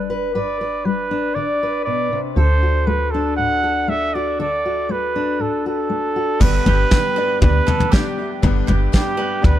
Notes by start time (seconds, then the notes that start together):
Already playing: G1 G3 D4
0.10 B4
0.34 G2 B4 D5
0.61 B4
0.85 G3 B4
1.11 D4
1.35 D3 D5
1.63 B4
1.85 B2 D5
2.13 C3
2.36 D2 D3 A4 C5
2.63 F#4
2.87 A3 B4
3.11 D4 A4
3.37 A2 F#5
3.64 A4
3.88 A3 E5
4.14 F#4 D5
4.39 D3 A4 D5
4.65 F#4
4.89 A3 B4
5.16 D4
5.39 A2 A4
5.66 F#4 A4
5.90 A3
6.16 F#4
6.39 G1 G2 D3 G3 B3 D4 G4 B4 D5, kick, floor tom, crash
6.64 G1 G3 B3 D4 G4 D5, floor tom
6.90 G2 D3 G3 B3 D4 G4 D5, kick, snare, tambourine
7.16 G3 B3 D4 G4 B4 D5
7.41 D2 G3 B3 D4 G4 B4 D5, kick, floor tom
7.67 G3 B3 D4 G4 A4 D5, floor tom
7.80 floor tom
7.92 G2 D3 G3 B3 D4 G4 D5, kick, snare, tambourine
8.17 G3 B3 D4 G4 E5
8.42 G1 G2 D3 G3 B3 D4 G4 B4, kick, floor tom
8.67 G1 G3 B3 D4 G4 D5, floor tom
8.92 G2 D3 G3 B3 D4 G4 D5, kick, snare, tambourine
9.17 G3 B3 D4 G4 B4 D5
9.42 D2 G3 B3 D4 G4 B4 D5, kick, floor tom